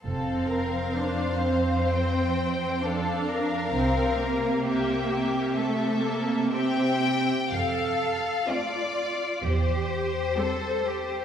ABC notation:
X:1
M:4/4
L:1/8
Q:1/4=64
K:F
V:1 name="Violin section"
f4 g2 f2- | f2 e2 e2 [eg]2 | f2 d2 c4 |]
V:2 name="Cello section"
F,,8 | C,8 | A2 F2 G2 A G |]
V:3 name="Violin section"
A B c4 A B- | B2 G G A2 G2 | z2 [CF]2 z2 [CG]2 |]
V:4 name="Viola section"
C2 D C3 D2 | C B,3 A, B, C2 | z2 [A,C]2 z2 [G,C]2 |]
V:5 name="Double bass section" clef=bass
F,,,2 z6 | C,,2 z6 | F,,2 z2 E,,2 z2 |]